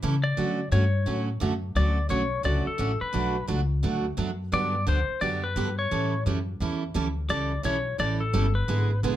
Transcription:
0.02 0.36 C#3 medium
0.02 0.14 E3 medium
0.02 0.14 G3 medium
0.02 0.14 C#4 medium
0.02 0.15 E4 medium
0.02 0.15 A4 medium
0.24 0.68 D5 medium
0.37 0.59 D3 medium
0.37 0.71 D3 medium
0.37 0.59 F#3 medium
0.37 0.59 A3 medium
0.37 0.59 C#4 medium
0.37 0.59 F#4 medium
0.72 1.05 G2 medium
0.72 0.83 D3 medium
0.72 0.83 F#3 medium
0.72 0.83 A3 medium
0.72 0.84 C#4 medium
0.72 0.84 F#4 medium
0.72 1.24 C#5 medium
1.06 1.40 A2 medium
1.06 1.28 D3 medium
1.06 1.28 F#3 medium
1.06 1.28 A3 medium
1.06 1.28 C#4 medium
1.06 1.29 F#4 medium
1.40 1.75 F#2 loud
1.40 1.52 D3 medium
1.40 1.53 F#3 medium
1.40 1.53 A3 medium
1.40 1.53 C#4 medium
1.40 1.53 F#4 medium
1.75 2.09 D2 medium
1.75 1.97 D3 medium
1.75 1.97 F#3 medium
1.75 1.97 A3 medium
1.75 1.98 C#4 medium
1.75 1.98 F#4 medium
1.75 2.08 D5 medium
2.09 2.44 B1 medium
2.09 2.21 D3 medium
2.09 2.21 F#3 medium
2.09 2.22 A3 medium
2.09 2.22 C#4 medium
2.09 2.22 F#4 medium
2.09 2.42 C#5 medium
2.43 2.65 C#2 medium
2.43 2.66 D3 medium
2.43 2.66 F#3 medium
2.43 2.66 A3 medium
2.43 2.66 C#4 medium
2.43 2.67 F#4 medium
2.43 2.66 D5 medium
2.67 2.99 A4 medium
2.67 muted upright bass stroke soft
2.78 3.00 A1 medium
2.78 2.90 D3 medium
2.78 2.90 F#3 medium
2.78 2.91 A3 medium
2.78 2.91 C#4 medium
2.78 2.91 F#4 medium
3.01 3.45 B4 medium
3.01 muted upright bass stroke soft
3.13 3.48 B1 medium
3.13 3.35 B2 medium
3.13 3.35 F#3 medium
3.13 3.35 A3 medium
3.13 3.36 D4 medium
3.13 3.36 F#4 medium
3.47 3.82 C#2 medium
3.47 3.59 B2 medium
3.47 3.60 F#3 medium
3.47 3.60 A3 medium
3.47 3.60 D4 medium
3.47 3.60 F#4 medium
3.83 4.17 D2 medium
3.83 4.05 B2 medium
3.83 4.05 F#3 medium
3.83 4.05 A3 medium
3.83 4.05 D4 medium
3.83 4.05 F#4 medium
4.17 4.51 F#2 medium
4.17 4.29 B2 medium
4.17 4.29 F#3 medium
4.17 4.29 A3 medium
4.17 4.30 D4 medium
4.17 4.30 F#4 medium
4.52 4.86 G2 medium
4.52 4.74 D3 medium
4.52 4.74 F#3 medium
4.52 4.74 B3 medium
4.52 4.74 D4 medium
4.52 4.75 G4 medium
4.52 4.85 D5 loud
4.87 5.07 D2 medium
4.87 4.98 D3 medium
4.87 4.98 F#3 medium
4.87 4.99 B3 medium
4.87 4.99 D4 medium
4.87 4.99 G4 medium
4.87 5.20 C5 medium
5.09 muted upright bass stroke soft
5.21 5.55 F#2 medium
5.21 5.43 D3 medium
5.21 5.43 F#3 medium
5.21 5.43 B3 medium
5.21 5.43 D4 medium
5.21 5.44 G4 medium
5.21 5.43 D5 medium
5.44 5.76 B4 medium
5.56 5.90 G2 loud
5.56 5.68 D3 medium
5.56 5.68 F#3 medium
5.56 5.68 B3 medium
5.56 5.68 D4 medium
5.56 5.68 G4 medium
5.79 6.23 C#5 medium
5.91 6.25 A2 medium
5.91 6.13 E3 medium
5.91 6.13 G3 medium
5.91 6.13 C#4 medium
5.91 6.13 E4 medium
5.91 6.13 A4 medium
6.26 6.59 F#2 medium
6.26 6.37 E3 medium
6.26 6.38 G3 medium
6.26 6.38 C#4 medium
6.26 6.38 E4 medium
6.26 6.38 A4 medium
6.60 6.94 E2 medium
6.60 6.82 E3 medium
6.60 6.82 G3 medium
6.60 6.82 C#4 medium
6.60 6.83 E4 medium
6.60 6.83 A4 medium
6.94 7.29 D2 medium
6.94 7.06 E3 medium
6.94 7.06 G3 medium
6.94 7.07 C#4 medium
6.94 7.07 E4 medium
6.94 7.07 A4 medium
7.29 7.63 C#2 medium
7.29 7.51 E3 medium
7.29 7.51 G3 medium
7.29 7.51 C#4 medium
7.29 7.51 E4 medium
7.29 7.52 A4 medium
7.29 7.62 D5 medium
7.63 7.98 B1 medium
7.63 7.75 E3 medium
7.63 7.76 G3 medium
7.63 7.76 C#4 medium
7.63 7.76 E4 medium
7.63 7.76 A4 medium
7.63 7.97 C#5 medium
7.98 8.33 A1 medium
7.98 8.20 E3 medium
7.98 8.21 G3 medium
7.98 8.21 C#4 medium
7.98 8.21 E4 medium
7.98 8.21 A4 medium
7.98 8.21 D5 medium
8.20 8.53 A4 medium
8.33 8.67 G1 medium
8.33 8.45 E3 medium
8.33 8.45 G3 medium
8.33 8.45 C#4 medium
8.33 8.45 E4 medium
8.33 8.46 A4 medium
8.55 8.99 B4 medium
8.68 9.02 G#1 medium
8.68 8.90 D3 medium
8.68 8.90 G#3 medium
8.68 8.90 B3 medium
8.68 8.90 E4 medium
8.68 8.90 G#4 medium
9.03 9.16 B1 medium
9.03 9.15 D3 medium
9.03 9.15 G#3 medium
9.03 9.15 B3 medium
9.03 9.15 E4 medium
9.03 9.15 G#4 medium

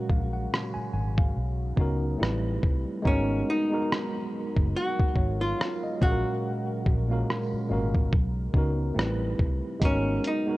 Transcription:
0.00 1.38 A#2 medium
0.00 1.34 C#3 medium
0.00 2.17 F#3 medium
0.00 1.32 G#3 medium
0.00 1.37 G#3 medium
0.00 1.38 C#4 medium
0.00 1.35 F#4 medium
0.00 1.38 F#4 medium
0.00 2.61 F#4 medium
0.00 0.10 A#4 loud
0.00 0.10 F5 medium
0.10 0.46 A#1 medium
0.10 0.32 F5 medium
0.10 kick medium
0.33 0.74 F#5 medium
0.54 cross-stick loud
0.74 0.92 G#5 medium
0.74 muted fingered electric bass stroke soft
0.94 1.30 G#1 medium
0.94 1.16 G#5 medium
1.18 1.58 F5 medium
1.18 kick medium
1.37 1.73 B1 medium
1.37 2.20 C#3 medium
1.37 2.20 D#4 medium
1.76 2.14 C#2 medium
1.76 2.20 B3 medium
1.76 2.20 C#4 medium
1.76 2.21 D#4 medium
1.76 2.22 F#4 medium
1.76 kick medium
1.81 2.22 A#4 medium
2.18 2.57 A1 loud
2.18 3.04 C3 medium
2.18 3.04 G3 medium
2.18 2.91 G3 medium
2.18 2.89 A3 medium
2.18 3.05 A3 medium
2.18 2.90 C4 medium
2.18 2.90 E4 medium
2.23 2.91 B4 medium
2.23 cross-stick loud
2.63 2.84 C2 medium
2.63 kick medium
3.02 3.42 G#1 loud
3.02 5.98 B2 medium
3.02 8.09 F#3 medium
3.02 3.54 G#3 loud
3.02 8.09 G#3 medium
3.02 3.55 B3 medium
3.02 3.55 D#4 loud
3.02 3.56 F#4 loud
3.02 8.08 A#4 medium
3.02 kick loud
3.07 3.50 C#4 medium
3.07 3.56 A#4 loud
3.50 4.72 D#4 loud
3.70 4.84 G#3 medium
3.70 4.85 B3 medium
3.70 4.85 D#4 medium
3.70 4.86 F#4 medium
3.74 4.86 A#4 medium
3.92 cross-stick loud
4.56 4.72 F#1 medium
4.56 kick medium
4.76 5.37 F#4 loud
5.00 muted fingered electric bass stroke soft
5.00 kick medium
5.16 5.53 G#1 medium
5.16 5.57 C#5 medium
5.16 kick medium
5.41 6.02 F4 loud
5.59 5.81 F5 medium
5.59 cross-stick loud
5.83 6.23 D#5 medium
6.01 6.22 A#1 loud
6.01 6.85 A#2 medium
6.01 8.11 C#3 medium
6.01 6.86 G#3 medium
6.01 6.86 C#4 medium
6.01 9.36 F#4 loud
6.01 6.87 F#4 medium
6.01 6.87 F5 medium
6.01 kick loud
6.05 6.10 G#4 medium
6.11 6.91 A#4 medium
6.86 7.22 A#1 medium
6.86 kick medium
7.08 7.55 A#2 medium
7.08 7.56 G#3 medium
7.08 7.56 C#4 medium
7.08 7.57 F#4 medium
7.08 7.57 F5 medium
7.13 7.58 A#4 medium
7.30 cross-stick loud
7.53 muted fingered electric bass stroke soft
7.68 8.07 G#1 medium
7.68 8.11 A#2 medium
7.68 8.12 G#3 medium
7.68 8.13 C#4 medium
7.68 8.13 F#4 medium
7.68 8.13 F5 medium
7.73 8.14 A#4 medium
7.94 kick medium
8.12 8.49 B1 medium
8.12 8.97 C#3 medium
8.12 8.96 D#4 medium
8.12 8.96 A#4 medium
8.12 kick medium
8.54 8.90 C#2 medium
8.54 8.96 B3 medium
8.54 8.97 C#4 medium
8.54 8.97 D#4 medium
8.54 8.98 F#4 medium
8.54 kick medium
8.58 8.99 A#4 medium
8.95 9.33 A1 loud
8.95 9.81 C3 medium
8.95 9.81 G3 medium
8.95 9.67 G3 medium
8.95 9.65 A3 medium
8.95 9.80 A3 medium
8.95 9.66 C4 medium
8.95 9.67 E4 medium
8.99 9.68 B4 loud
8.99 cross-stick loud
9.39 9.60 C2 medium
9.39 kick medium
9.80 10.18 G#1 loud
9.80 10.57 B2 medium
9.80 10.57 F#3 medium
9.80 10.31 G#3 loud
9.80 10.57 G#3 medium
9.80 10.32 B3 medium
9.80 10.32 D#4 loud
9.80 10.33 F#4 loud
9.80 10.57 G#4 medium
9.80 kick loud
9.80 closed hi-hat medium
9.85 10.27 C#4 medium
9.85 10.33 A#4 loud
10.24 10.57 D#4 medium
10.24 closed hi-hat medium
10.46 10.57 G#3 medium
10.46 10.57 B3 medium
10.46 10.57 D#4 medium
10.46 10.57 F#4 medium
10.51 10.57 A#4 medium

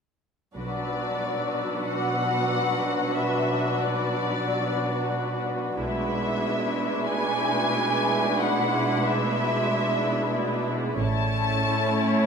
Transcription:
0.56 1.18 B1 soft
0.56 5.74 B2 soft
0.56 5.74 F#3 soft
0.56 5.74 D4 soft
0.56 5.74 F#4 soft
0.56 5.75 F#4 soft
0.56 5.75 B4 soft
0.56 5.74 D5 soft
0.56 1.83 D5 soft
0.56 5.74 F#5 soft
0.56 5.43 D6 soft
0.56 4.77 E6 soft
1.87 3.17 F#5 medium
1.87 5.41 F#6 soft
3.16 3.81 E5 soft
3.81 5.45 D5 soft
5.77 6.39 B1 soft
5.77 10.96 B2 soft
5.77 10.96 G#3 soft
5.77 10.96 D4 soft
5.77 10.96 E4 soft
5.77 11.00 G#4 soft
5.77 10.96 B4 soft
5.77 10.96 D5 soft
5.77 7.04 E5 soft
5.77 10.99 E5 soft
5.77 10.63 B5 soft
5.77 8.94 C#6 soft
7.07 8.37 G#5 medium
7.07 10.63 D6 soft
8.40 9.04 F#5 medium
8.94 9.98 C6 soft
9.05 10.68 E5 medium
11.00 11.61 A1 medium
11.00 12.26 A2 medium
11.00 12.26 A3 medium
11.00 12.26 C#4 medium
11.00 12.26 E4 medium
11.00 12.26 A4 soft
11.00 12.26 C#5 medium
11.00 12.26 C#5 soft
11.00 12.26 E5 soft
11.00 12.26 A5 medium

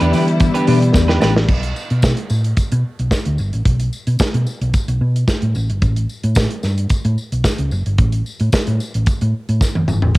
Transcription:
0.00 0.12 E2 loud
0.00 1.44 D3 medium
0.00 0.67 E3 medium
0.00 1.45 G3 medium
0.00 0.68 B3 medium
0.00 1.45 B3 medium
0.00 0.12 D4 medium
0.00 1.45 E4 medium
0.00 0.68 G4 medium
0.00 0.13 G4 medium
0.00 0.12 B4 medium
0.00 0.69 D5 medium
0.00 closed hi-hat soft
0.13 0.48 E3 medium
0.13 0.24 D4 medium
0.13 0.25 G4 medium
0.13 0.25 B4 medium
0.13 open hi-hat medium
0.13 tambourine medium
0.27 muted clean electric guitar stroke soft
0.27 closed hi-hat soft
0.40 muted clean electric guitar stroke soft
0.40 kick loud
0.40 closed hi-hat medium
0.40 tambourine medium
0.54 0.66 D4 medium
0.54 0.67 G4 medium
0.54 0.67 B4 medium
0.54 closed hi-hat soft
0.67 0.90 B2 medium
0.67 1.35 E3 medium
0.67 1.36 B3 medium
0.67 0.78 D4 medium
0.67 0.78 G4 medium
0.67 1.36 G4 medium
0.67 0.79 B4 medium
0.67 1.36 D5 medium
0.67 open hi-hat medium
0.81 muted clean electric guitar stroke soft
0.81 closed hi-hat soft
0.94 1.17 E2 medium
0.94 muted clean electric guitar stroke soft
0.94 kick loud
0.94 snare medium
0.94 tambourine medium
1.08 1.19 D4 soft
1.08 1.18 G4 medium
1.08 1.18 B4 medium
1.08 snare medium
1.20 1.45 A1 loud
1.20 1.35 D4 medium
1.20 1.35 G4 medium
1.20 1.34 B4 medium
1.20 snare medium
1.20 tambourine medium
1.36 snare medium
1.48 1.71 B1 medium
1.48 kick loud
1.48 crash medium
1.48 tambourine soft
1.63 closed hi-hat soft
1.76 tambourine soft
1.90 2.13 B2 medium
1.90 closed hi-hat soft
2.02 kick loud
2.02 snare loud
2.02 tambourine medium
2.17 closed hi-hat soft
2.30 2.53 A2 medium
2.30 tambourine medium
2.44 closed hi-hat soft
2.57 muted fingered electric bass stroke soft
2.57 kick medium
2.57 closed hi-hat medium
2.57 tambourine medium
2.72 2.82 B2 medium
2.72 closed hi-hat soft
2.99 3.10 B1 medium
2.99 closed hi-hat soft
3.11 kick medium
3.11 snare medium
3.11 tambourine medium
3.25 3.36 D2 medium
3.25 closed hi-hat soft
3.38 3.51 G1 medium
3.38 tambourine soft
3.53 3.64 A1 medium
3.53 closed hi-hat soft
3.65 3.88 B1 medium
3.65 kick loud
3.65 closed hi-hat medium
3.80 closed hi-hat soft
3.93 tambourine soft
4.07 4.17 B2 medium
4.07 closed hi-hat soft
4.19 muted fingered electric bass stroke soft
4.19 kick loud
4.19 snare loud
4.19 tambourine medium
4.34 4.45 B2 medium
4.34 closed hi-hat soft
4.47 tambourine medium
4.61 4.72 B1 medium
4.61 closed hi-hat soft
4.74 kick medium
4.74 closed hi-hat medium
4.74 tambourine medium
4.88 4.99 B1 medium
4.88 closed hi-hat soft
5.01 5.23 B2 loud
5.16 closed hi-hat soft
5.28 kick loud
5.28 snare medium
5.28 tambourine medium
5.42 5.53 A2 medium
5.42 closed hi-hat soft
5.55 5.67 A1 loud
5.55 tambourine soft
5.70 5.80 G1 medium
5.70 closed hi-hat soft
5.82 6.05 A1 medium
5.82 kick loud
5.82 closed hi-hat medium
5.82 tambourine soft
5.96 closed hi-hat soft
6.09 tambourine soft
6.24 6.46 A2 medium
6.24 closed hi-hat soft
6.35 kick loud
6.35 snare loud
6.35 tambourine loud
6.50 closed hi-hat soft
6.63 6.86 G2 medium
6.63 snare soft
6.63 tambourine medium
6.78 closed hi-hat soft
6.90 muted fingered electric bass stroke soft
6.90 kick medium
6.90 closed hi-hat medium
6.90 tambourine medium
7.05 7.15 A2 medium
7.05 closed hi-hat soft
7.18 tambourine soft
7.32 7.43 B1 medium
7.32 closed hi-hat soft
7.44 kick medium
7.44 snare medium
7.44 tambourine medium
7.58 7.69 C#2 medium
7.58 closed hi-hat soft
7.71 7.84 F#1 medium
7.71 tambourine soft
7.86 7.97 G1 medium
7.86 closed hi-hat soft
7.98 8.21 A1 medium
7.98 kick loud
7.98 closed hi-hat medium
8.12 closed hi-hat soft
8.26 tambourine soft
8.40 8.51 A2 medium
8.40 closed hi-hat soft
8.52 kick loud
8.52 snare loud
8.52 tambourine medium
8.67 8.78 A2 medium
8.67 closed hi-hat soft
8.80 tambourine medium
8.94 9.05 A1 medium
8.94 closed hi-hat soft
9.06 kick medium
9.06 closed hi-hat medium
9.06 tambourine medium
9.21 9.32 A2 medium
9.21 closed hi-hat medium
9.49 9.59 A2 medium
9.49 closed hi-hat soft
9.61 kick loud
9.61 snare soft
9.61 tambourine medium
9.75 9.87 F#1 medium
9.75 high tom medium
9.88 10.01 G1 medium
9.88 mid tom medium
9.88 tambourine soft
10.02 10.14 A1 medium
10.02 floor tom medium
10.15 closed hi-hat medium

